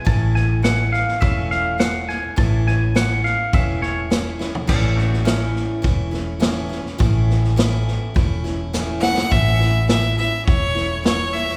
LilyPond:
<<
  \new Staff \with { instrumentName = "Clean electric guitar" } { \time 4/4 \key a \major \tempo 4 = 104 a''8 gis''8 fis''8 f''8 e''8 f''8 fis''8 gis''8 | a''8 gis''8 fis''8 f''8 e''8 cis''8 r4 | <cis' a'>8 <a fis'>8 cis'8 r2 r8 | r1 |
r1 | }
  \new Staff \with { instrumentName = "Fiddle" } { \time 4/4 \key a \major r1 | r1 | r1 | r2. r8 fis''8 |
e''4 e''8 e''8 cis''4 cis''8 e''8 | }
  \new Staff \with { instrumentName = "Steel-string acoustic guitar" } { \time 4/4 \key a \major <a, e a cis' e'>4 <e a cis' e'>4 <a, e a cis' e'>4 <e a cis' e'>4 | <a, e a cis' e'>4 <e a cis' e'>8 <a cis' e'>8 <a, e a cis' e'>4 <e a cis' e'>8 <a cis' e'>8 | <a, e a cis' e'>4 <a, e a cis' e'>4 <e a cis' e'>8 <a cis' e'>8 <a, e a cis' e'>8 <a cis' e'>8 | <a, e a cis' e'>4 <a, e a cis' e'>4 <e a cis' e'>8 <a cis' e'>8 <a, e a cis' e'>8 <a cis' e'>8 |
<a, e a cis' e'>8 <a cis' e'>8 <e a cis' e'>8 <a cis' e'>4 <a cis' e'>8 <e a cis' e'>4 | }
  \new Staff \with { instrumentName = "Fingered electric bass" } { \clef bass \time 4/4 \key a \major a,,2 e,,2 | a,,2 e,,2 | a,,2 e,,2 | a,,2 e,,2 |
a,,2 e,,2 | }
  \new DrumStaff \with { instrumentName = "Drums" } \drummode { \time 4/4 <bd sn>8 sn8 <hhp sn>8 sn16 sn16 <bd sn>8 sn8 <hhp sn>8 sn8 | <bd sn>8 sn8 <hhp sn>8 sn8 <bd sn>8 sn8 <hhp sn>8 sn16 tomfh16 | <cymc bd sn>8 sn16 sn16 <hhp sn>8 sn8 <bd sn>8 sn8 <hhp sn>8 sn16 sn16 | <bd sn>8 sn16 sn16 <hhp sn>8 sn8 <bd sn>8 sn8 <hhp sn>8 sn16 sn16 |
<bd sn>8 sn8 <hhp sn>8 sn8 <bd sn>8 sn8 <hhp sn>8 sn16 sn16 | }
>>